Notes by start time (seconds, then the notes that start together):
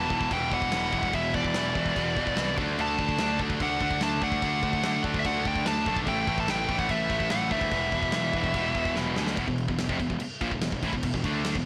Already playing: E2 A5
0.10 E1 E2 B2 E3, kick
0.21 kick
0.31 E1 E2 B2 E3 G5, kick, crash
0.51 E1 E2 B2 E3 F#5, kick
0.62 kick
0.72 E1 E2 B2 E3, snare, crash
0.93 E1 E2 B2 E3, kick
1.03 kick
1.13 E1 E2 B2 E3 E5, kick, crash
1.33 E1 E2 B2 E3 D5, kick
1.45 kick
1.54 E1 E2 B2 E3, snare, crash
1.75 E1 E2 B2 E3, kick
1.86 kick
1.95 E1 E2 B2 E3, kick, crash
2.16 E1 E2 B2 E3, kick
2.27 kick
2.37 C2 E2 B2 E3, snare, crash
2.57 D2 D3 A3 D4, kick
2.78 D2 D3 A3 D4 A5, crash
2.98 D2 D3 A3 D4, kick
3.09 kick
3.18 D2 D3 A3 D4, snare, crash
3.39 D2 D3 A3 D4, kick
3.50 kick
3.60 D2 D3 A3 D4 F#5, kick, crash
3.81 D2 D3 A3 D4, kick
3.91 kick
4.01 D2 D3 A3 D4 A5, snare, crash
4.22 D2 D3 A3 D4 F#5, kick
4.32 kick
4.42 D2 D3 A3 D4, kick, crash
4.63 D2 D3 A3 D4, kick
4.73 kick
4.83 D2 D3 A3 D4, snare, crash
5.04 D2 D3 A3 D4, kick
5.14 kick
5.20 E5
5.25 D2 D3 A3 D4 F#5, kick, crash
5.45 D2 D3 A3 D4 G5, kick
5.56 kick
5.66 D2 D3 A3 D4 A5, snare, crash
5.86 B1 D3 A3 D4, kick
5.97 kick
6.07 A1 A2 E3 A3 G5, kick, crash
6.27 A1 A2 E3 A3, kick
6.38 A5, kick
6.48 A1 A2 E3 A3 G5, snare, crash
6.69 A1 A2 E3 A3, kick
6.79 F#5, kick
6.89 A1 A2 E3 A3 E5, kick, crash
7.10 A1 A2 E3 A3, kick
7.20 kick
7.30 A1 A2 E3 A3 F#5, snare, crash
7.51 D2 A2 E3 A3 E5, kick
7.61 kick
7.71 E1 E2 B2 E3, kick, crash
7.92 E1 E2 B2 E3, kick
8.03 kick
8.12 E1 E2 B2 E3, snare, crash
8.33 E1 E2 B2 E3, kick
8.44 kick
8.54 E1 E2 B2 E3, kick, crash
8.75 E1 E2 B2 E3, kick
8.85 kick
8.96 E1 E2 B2 E3, snare
9.16 D2 E2 B2 E3, snare
9.27 snare
9.37 E1 E2 B2, kick, crash
9.48 E1 E2 B2, kick
9.58 crash
9.68 E1 E2 B2, kick
9.78 E1 E2 B2, snare, crash
9.89 F1 F2 C3, kick
10.00 E1 E2 B2, kick, crash
10.10 E1 E2 B2, kick
10.20 muted distorted electric guitar stroke, muted picked electric bass stroke, crash
10.41 A#1 A#2 F3, kick, crash
10.51 E1 E2 B2, kick
10.61 E1 E2 B2, snare, crash
10.72 E1 E2 B2, kick
10.83 A1 A2 E3, kick, crash
10.93 E1 E2 B2, kick
11.03 E1 E2 B2, kick, crash
11.14 E1 E2 B2, kick
11.24 D2 D3 A3 D4, kick, crash
11.45 snare, crash
11.55 E1 E2 B2, kick